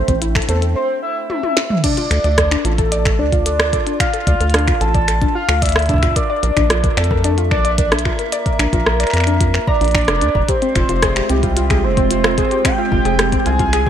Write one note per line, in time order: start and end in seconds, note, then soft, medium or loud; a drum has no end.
0.00 0.76 A3 medium
0.00 0.76 C4 medium
0.00 0.76 D4 medium
0.00 0.18 C5 loud
0.00 0.76 C5 medium
0.00 0.76 E5 medium
0.00 0.76 G5 medium
0.08 0.41 A1 loud
0.08 0.20 C4 loud
0.08 kick loud
0.08 closed hi-hat medium
0.22 0.26 E4 medium
0.22 closed hi-hat medium
0.35 0.43 A4 medium
0.35 finger snap medium
0.35 kick loud
0.42 closed hi-hat soft
0.49 0.76 E2 medium
0.49 0.61 A4 medium
0.49 0.53 C5 loud
0.49 closed hi-hat medium
0.62 0.70 A4 medium
0.62 closed hi-hat medium
0.75 1.01 C5 loud
1.02 1.28 E5 loud
1.30 1.80 E5 loud
1.30 high tom medium
1.43 high tom medium
1.57 snare medium
1.70 mid tom medium
1.84 1.95 D4 loud
1.84 2.66 D5 loud
1.84 kick loud
1.84 closed hi-hat medium
1.84 crash loud
1.97 2.02 F4 medium
1.97 closed hi-hat soft
2.11 2.19 D2 loud
2.11 2.19 A4 medium
2.11 finger snap medium
2.11 closed hi-hat medium
2.24 2.57 D2 loud
2.24 2.29 D5 loud
2.24 closed hi-hat soft
2.38 2.46 A4 medium
2.38 kick loud
2.38 cross-stick loud
2.38 closed hi-hat medium
2.51 2.63 D4 loud
2.51 finger snap medium
2.51 closed hi-hat soft
2.65 3.20 A1 medium
2.65 2.70 F4 medium
2.65 3.21 A4 loud
2.65 closed hi-hat medium
2.78 2.86 A4 medium
2.78 kick loud
2.78 closed hi-hat soft
2.92 2.97 D5 loud
2.92 closed hi-hat loud
3.05 6.16 F4 medium
3.05 3.13 A4 medium
3.05 finger snap medium
3.05 kick loud
3.05 closed hi-hat soft
3.19 3.78 D2 medium
3.19 3.31 D4 loud
3.19 3.45 D5 loud
3.32 3.37 F4 medium
3.32 kick loud
3.32 closed hi-hat soft
3.46 3.54 A4 medium
3.46 3.96 D5 loud
3.46 closed hi-hat medium
3.60 3.64 D5 loud
3.60 finger snap medium
3.60 cross-stick loud
3.60 closed hi-hat soft
3.73 3.81 A4 medium
3.73 kick loud
3.73 closed hi-hat medium
3.87 3.98 D4 loud
3.87 closed hi-hat soft
4.00 4.05 F4 medium
4.00 4.83 F5 loud
4.00 finger snap medium
4.00 kick loud
4.00 closed hi-hat loud
4.14 4.21 A4 medium
4.14 closed hi-hat soft
4.27 4.35 D2 loud
4.27 4.32 D5 loud
4.27 kick loud
4.27 closed hi-hat medium
4.40 4.73 D2 loud
4.40 4.48 A4 medium
4.40 closed hi-hat soft
4.50 closed hi-hat soft
4.54 4.66 D4 loud
4.54 cross-stick loud
4.54 closed hi-hat loud
4.59 closed hi-hat soft
4.67 4.72 F4 medium
4.67 finger snap medium
4.67 kick loud
4.67 closed hi-hat soft
4.81 5.27 A1 medium
4.81 4.89 A4 medium
4.81 5.34 A5 loud
4.81 closed hi-hat medium
4.95 4.99 D5 loud
4.95 kick loud
4.95 closed hi-hat soft
5.08 5.16 A4 medium
5.08 finger snap medium
5.08 closed hi-hat medium
5.22 5.33 D4 loud
5.22 kick loud
5.22 closed hi-hat soft
5.35 5.40 F4 medium
5.35 5.63 F5 loud
5.49 6.08 D2 medium
5.49 5.56 A4 medium
5.49 finger snap medium
5.49 closed hi-hat soft
5.62 5.67 D5 loud
5.62 6.17 E5 loud
5.62 kick loud
5.62 closed hi-hat medium
5.66 closed hi-hat medium
5.69 closed hi-hat medium
5.72 cross-stick loud
5.72 closed hi-hat medium
5.76 5.84 A4 medium
5.76 closed hi-hat soft
5.79 closed hi-hat soft
5.82 closed hi-hat soft
5.86 kick loud
5.86 closed hi-hat soft
5.89 6.01 D4 loud
5.89 closed hi-hat medium
5.94 kick loud
5.98 kick medium
6.03 6.07 F4 medium
6.03 finger snap medium
6.03 kick medium
6.03 closed hi-hat soft
6.07 kick medium
6.12 kick soft
6.16 6.24 A#4 medium
6.16 6.98 D5 loud
6.16 kick loud
6.16 closed hi-hat loud
6.30 6.34 D5 loud
6.43 6.52 A#1 loud
6.43 6.51 A#4 medium
6.43 closed hi-hat medium
6.57 6.89 A#1 loud
6.57 6.68 D4 loud
6.57 finger snap medium
6.57 kick loud
6.57 closed hi-hat soft
6.70 6.75 F4 medium
6.70 cross-stick loud
6.70 closed hi-hat medium
6.78 12.02 E5 medium
6.84 6.92 A#4 medium
6.84 kick loud
6.84 closed hi-hat soft
6.97 7.53 F2 medium
6.97 7.51 A4 loud
6.97 7.02 D5 loud
6.97 finger snap medium
6.97 closed hi-hat medium
7.04 closed hi-hat soft
7.11 7.19 A#4 medium
7.11 kick loud
7.24 7.36 D4 loud
7.24 closed hi-hat medium
7.38 7.43 F4 medium
7.38 closed hi-hat soft
7.51 8.11 A#1 medium
7.51 7.59 A#4 medium
7.51 7.76 D5 loud
7.51 finger snap medium
7.51 kick loud
7.65 7.70 D5 loud
7.65 closed hi-hat soft
7.78 7.86 A#4 medium
7.78 7.90 D5 loud
7.78 kick loud
7.78 closed hi-hat loud
7.92 8.03 D4 loud
7.92 cross-stick loud
7.92 closed hi-hat soft
7.99 closed hi-hat medium
8.05 8.10 F4 medium
8.05 9.69 A#4 loud
8.05 finger snap medium
8.05 kick loud
8.19 8.27 A#4 medium
8.19 closed hi-hat soft
8.32 8.37 D5 loud
8.32 closed hi-hat medium
8.46 8.54 A#4 medium
8.46 kick loud
8.46 closed hi-hat soft
8.59 8.68 A#1 loud
8.59 8.71 D4 loud
8.59 finger snap medium
8.59 closed hi-hat medium
8.73 9.05 A#1 loud
8.73 8.78 F4 medium
8.73 kick loud
8.73 closed hi-hat soft
8.86 8.94 A#4 medium
8.86 cross-stick loud
9.00 9.05 D5 loud
9.00 finger snap soft
9.00 closed hi-hat medium
9.03 finger snap soft
9.07 finger snap soft
9.07 closed hi-hat soft
9.10 9.59 F2 medium
9.10 9.21 A#4 medium
9.10 finger snap soft
9.14 finger snap soft
9.14 closed hi-hat medium
9.17 finger snap soft
9.20 finger snap soft
9.20 closed hi-hat soft
9.24 9.39 D4 loud
9.24 finger snap soft
9.24 closed hi-hat soft
9.40 9.45 F4 medium
9.40 kick loud
9.40 closed hi-hat medium
9.54 9.62 A#4 medium
9.54 finger snap medium
9.67 9.94 D5 loud
9.67 9.79 A#5 loud
9.67 kick loud
9.81 10.07 A#1 loud
9.81 9.86 D4 medium
9.81 closed hi-hat soft
9.84 closed hi-hat soft
9.88 closed hi-hat soft
9.91 10.02 D4 loud
9.91 10.50 D5 loud
9.91 finger snap medium
9.91 kick loud
9.91 closed hi-hat soft
10.01 closed hi-hat soft
10.05 10.23 F1 medium
10.05 cross-stick loud
10.05 closed hi-hat soft
10.08 10.20 A#4 loud
10.08 closed hi-hat soft
10.21 10.30 F2 loud
10.21 10.29 D4 medium
10.21 closed hi-hat medium
10.35 10.44 F1 medium
10.35 10.40 A#5 medium
10.35 kick loud
10.48 13.90 G#3 medium
10.48 13.90 C4 medium
10.48 10.56 G4 medium
10.48 13.90 C5 medium
10.48 11.31 C5 loud
10.48 kick loud
10.48 closed hi-hat medium
10.61 13.90 C4 medium
10.61 10.74 C4 loud
10.61 13.90 F4 medium
10.61 closed hi-hat soft
10.76 10.84 F1 loud
10.76 10.80 F4 medium
10.76 finger snap medium
10.76 kick loud
10.76 closed hi-hat medium
10.89 11.22 F1 loud
10.89 10.94 F4 loud
10.89 closed hi-hat soft
11.03 11.07 G#4 loud
11.03 kick loud
11.03 cross-stick loud
11.03 closed hi-hat medium
11.16 11.24 G4 medium
11.16 finger snap medium
11.16 closed hi-hat soft
11.29 11.85 C2 medium
11.29 11.41 C4 loud
11.29 11.85 G4 loud
11.29 closed hi-hat medium
11.43 11.48 F4 medium
11.43 kick loud
11.43 closed hi-hat soft
11.57 11.61 F4 loud
11.57 closed hi-hat medium
11.70 11.75 G#4 loud
11.70 finger snap medium
11.70 kick loud
11.70 closed hi-hat soft
11.84 12.43 F1 medium
11.84 11.92 G4 medium
11.84 12.10 C5 loud
11.97 12.09 C4 loud
11.97 kick loud
11.97 closed hi-hat soft
12.11 12.15 F4 medium
12.11 12.67 C5 loud
12.11 closed hi-hat medium
12.24 12.29 F4 loud
12.24 finger snap medium
12.24 cross-stick loud
12.24 closed hi-hat soft
12.38 12.43 G#4 loud
12.38 kick loud
12.38 closed hi-hat medium
12.51 12.59 G4 medium
12.51 closed hi-hat soft
12.65 12.76 C4 loud
12.65 13.48 G5 loud
12.65 finger snap medium
12.65 kick loud
12.65 closed hi-hat medium
12.78 12.83 F4 medium
12.92 13.00 F1 loud
12.92 12.97 F4 loud
12.92 kick loud
13.05 13.38 F1 loud
13.05 13.10 G#4 loud
13.05 closed hi-hat soft
13.19 13.27 G4 medium
13.19 finger snap medium
13.19 cross-stick loud
13.19 closed hi-hat medium
13.32 13.44 C4 loud
13.32 kick loud
13.32 closed hi-hat soft
13.46 13.90 C2 medium
13.46 13.51 F4 medium
13.46 13.90 G#5 loud
13.46 closed hi-hat medium
13.59 13.64 F4 loud
13.59 kick loud
13.59 closed hi-hat soft
13.73 13.78 G#4 loud
13.73 finger snap medium
13.73 closed hi-hat medium
13.86 13.90 G4 medium
13.86 kick loud